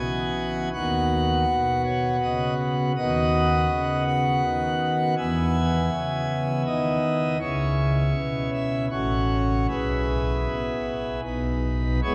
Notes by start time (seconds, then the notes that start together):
Already playing: B3 F#4 G#5
0.00 E3
0.73 D#2 D#3 B3 F#4 F#5
1.48 B2
1.85 C#5
2.23 C#3 D#5
2.97 D#2 D#3 B3 F#4 D#5
3.70 C#3
4.07 F#5
4.43 D#3
5.17 E2 E3 B3 E4 G#5
5.92 C#3
6.66 D#3 D#5
7.41 C#2 C#3 C#4 E4 C#5
8.16 B2
8.53 E5
8.91 A1 A2 C#4 F#4 C#5
9.68 B1 B2 E4 G#4 B4
10.47 B3
11.24 B1 B2 D#4 B4
12.03 E1 E2 G#3 B3 E4 G#4 C#5